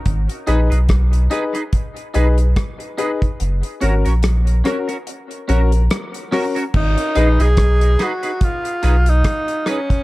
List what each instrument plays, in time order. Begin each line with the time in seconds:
0.06 sub bass G#1, kick, closed hi-hat
0.29 closed hi-hat
0.47 sub bass A#1, clean electric guitar D#4 G#4 B4, grand piano D#4 G#4 B4, closed hi-hat
0.70 sub bass B1, clean electric guitar D#4 G#4 B4, closed hi-hat
0.89 kick, cross-stick, closed hi-hat
1.13 closed hi-hat
1.30 clean electric guitar D#4 G#4 B4, grand piano D#4 G#4 B4, closed hi-hat
1.54 clean electric guitar D#4 G#4 B4, closed hi-hat
1.73 kick, closed hi-hat
1.96 closed hi-hat
2.14 sub bass B1, clean electric guitar D#4 G#4 B4, grand piano D#4 G#4 B4, closed hi-hat
2.38 closed hi-hat
2.56 kick, cross-stick, closed hi-hat
2.80 closed hi-hat
2.97 clean electric guitar D#4 G#4 B4, grand piano D#4 G#4 B4, closed hi-hat
3.22 kick, closed hi-hat
3.40 sub bass F#1, closed hi-hat
3.63 closed hi-hat
3.80 sub bass G#1, clean electric guitar C#4 F#4 A#4, grand piano C#4 F#4 A#4, closed hi-hat
4.05 sub bass A#1, clean electric guitar C#4 F#4 A#4, closed hi-hat
4.23 cross-stick, closed hi-hat
4.47 closed hi-hat
4.64 clean electric guitar C#4 F#4 A#4, grand piano C#4 F#4 A#4, cross-stick, closed hi-hat
4.88 clean electric guitar C#4 F#4 A#4, closed hi-hat
5.07 closed hi-hat
5.31 closed hi-hat
5.48 sub bass A#1, clean electric guitar C#4 F#4 A#4, grand piano C#4 F#4 A#4, closed hi-hat
5.72 grand piano F#4 A#4, closed hi-hat
5.90 cross-stick, closed hi-hat
6.14 closed hi-hat
6.31 clean electric guitar C#4 F#4 A#4, grand piano C#4 F#4 A#4, cross-stick, open hi-hat
6.55 clean electric guitar C#4 F#4 A#4, closed hi-hat
6.74 sub bass G#1, tenor saxophone D#4, kick, crash
6.98 closed hi-hat
7.15 sub bass A#1, clean electric guitar D#4 G#4 B4, grand piano D#4 G#4 B4, closed hi-hat
7.39 sub bass B1, clean electric guitar D#4 G#4 B4, tenor saxophone G#4, closed hi-hat
7.57 kick, cross-stick, closed hi-hat
7.81 closed hi-hat
7.99 clean electric guitar D#4 G#4 B4, tenor saxophone F#4, cross-stick, closed hi-hat
8.23 clean electric guitar D#4 G#4 B4, closed hi-hat
8.41 tenor saxophone F4, kick, closed hi-hat
8.65 closed hi-hat
8.83 sub bass B1, clean electric guitar D#4 G#4 B4, closed hi-hat
9.06 tenor saxophone D#4, closed hi-hat
9.24 kick, cross-stick, closed hi-hat
9.48 closed hi-hat
9.66 tenor saxophone C#4, clean electric guitar D#4 G#4 B4, cross-stick, closed hi-hat
9.90 kick, closed hi-hat